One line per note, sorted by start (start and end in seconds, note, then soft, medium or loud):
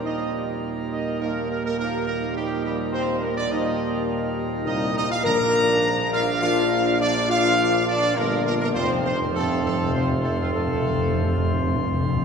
0.00 4.67 D#2 medium
0.00 3.46 A#2 medium
0.00 3.47 G3 medium
0.00 0.58 D#4 medium
0.00 3.47 F4 medium
0.00 3.47 A#4 medium
0.04 1.16 F3 medium
0.04 1.16 D#4 medium
0.04 0.58 D#5 medium
0.91 1.04 D#4 medium
0.91 1.18 D#5 medium
1.20 1.75 F3 medium
1.20 1.48 A#3 medium
1.20 1.74 D#4 medium
1.20 1.47 A#4 medium
1.49 1.56 A#3 medium
1.49 1.63 A#4 medium
1.64 1.77 A#3 medium
1.64 1.77 A#4 loud
1.78 2.33 F3 medium
1.78 2.05 A#3 medium
1.78 2.32 D#4 medium
1.78 2.05 A#4 loud
2.06 2.34 A#3 medium
2.06 2.34 A#4 loud
2.35 3.47 F3 medium
2.35 2.49 G3 medium
2.35 3.47 D#4 medium
2.35 2.62 G4 loud
2.63 2.91 G3 medium
2.63 2.77 G4 medium
2.92 3.20 C4 loud
2.92 3.20 C5 loud
3.21 3.28 A#3 medium
3.21 3.36 A#4 medium
3.35 3.42 D4 medium
3.35 3.50 D5 loud
3.50 8.71 A#2 medium
3.50 4.63 F3 medium
3.50 5.22 G3 medium
3.50 4.04 D#4 medium
3.50 4.62 D#4 medium
3.50 8.71 F4 medium
3.50 5.22 A#4 medium
3.50 4.08 D#5 loud
4.65 5.05 C2 medium
4.65 5.09 F3 medium
4.65 4.93 D#4 loud
4.65 5.09 D#4 medium
4.65 4.94 D#5 loud
4.95 5.09 D#4 loud
4.95 5.09 D#5 loud
5.09 5.16 F4 loud
5.09 5.25 F5 loud
5.23 8.13 A#1 medium
5.23 6.09 A#2 loud
5.23 6.38 F3 loud
5.23 8.73 F3 medium
5.23 6.38 D4 loud
5.23 6.07 A#4 loud
5.23 8.75 D5 medium
5.23 6.08 A#5 loud
6.12 6.26 F4 loud
6.12 6.39 F5 loud
6.41 6.96 F3 medium
6.41 6.96 D4 medium
6.41 6.96 F4 loud
6.41 6.96 F5 loud
7.00 8.13 F3 loud
7.00 7.13 D4 loud
7.00 8.13 D4 loud
7.00 7.27 D5 loud
7.29 7.83 F4 loud
7.29 7.83 F5 loud
7.87 8.14 D4 loud
7.87 8.17 D5 loud
8.15 8.71 G1 loud
8.15 8.71 F3 medium
8.15 8.43 A#3 loud
8.15 8.71 D4 medium
8.15 8.45 A#4 loud
8.44 8.58 A#3 loud
8.44 8.53 A#4 loud
8.60 8.74 A#3 medium
8.60 8.67 A#4 loud
8.75 12.05 F1 loud
8.75 8.82 F2 soft
8.75 12.25 C3 medium
8.75 12.25 F3 medium
8.75 9.31 F3 medium
8.75 9.03 C4 loud
8.75 9.34 C4 medium
8.75 12.25 F4 medium
8.75 8.88 C5 loud
8.75 12.25 C5 medium
8.83 8.89 F2 soft
8.90 8.97 F2 soft
8.98 9.04 F2 soft
9.05 9.12 F2 soft
9.05 9.18 C4 medium
9.05 9.18 C5 loud
9.13 9.20 F2 soft
9.21 9.27 F2 soft
9.28 9.35 F2 soft
9.34 9.43 F2 soft
9.34 9.90 F3 medium
9.34 9.62 A3 medium
9.34 9.91 C4 medium
9.34 9.62 A4 loud
9.44 9.50 F2 soft
9.52 9.57 F2 soft
9.59 9.65 F2 soft
9.63 9.73 F2 medium
9.63 9.77 A3 medium
9.63 9.92 A4 loud
9.75 9.80 F2 medium
9.81 9.88 F2 medium
9.89 9.96 F2 medium
9.94 10.04 F2 medium
9.94 10.51 F3 medium
9.94 10.22 C4 medium
9.94 10.51 C4 medium
9.94 10.08 C5 medium
10.05 10.11 F2 medium
10.13 10.19 F2 medium
10.20 10.27 F2 medium
10.20 10.38 A4 medium
10.25 10.34 F2 medium
10.25 10.39 A3 medium
10.35 10.42 F2 medium
10.39 10.49 F2 medium
10.39 10.47 F3 medium
10.39 10.54 F4 medium
10.50 10.57 F2 medium
10.50 11.73 A3 medium
10.50 11.73 A4 loud
10.55 10.65 F2 medium
10.55 12.05 F3 medium
10.55 12.05 C4 medium
10.66 10.73 F2 medium
10.74 10.80 F2 medium
10.82 10.89 F2 medium
10.90 10.97 F2 medium
10.98 11.05 F2 medium
11.06 11.13 F2 medium
11.14 11.20 F2 medium
11.22 11.29 F2 medium
11.30 11.35 F2 medium
11.36 11.43 F2 medium
11.45 11.52 F2 medium
11.53 11.60 F2 medium
11.61 11.67 F2 medium
11.68 11.75 F2 medium
11.76 11.82 F2 loud
11.84 11.90 F2 loud
11.92 11.98 F2 loud
12.00 12.07 F2 loud
12.08 12.15 F2 loud
12.16 12.22 F2 loud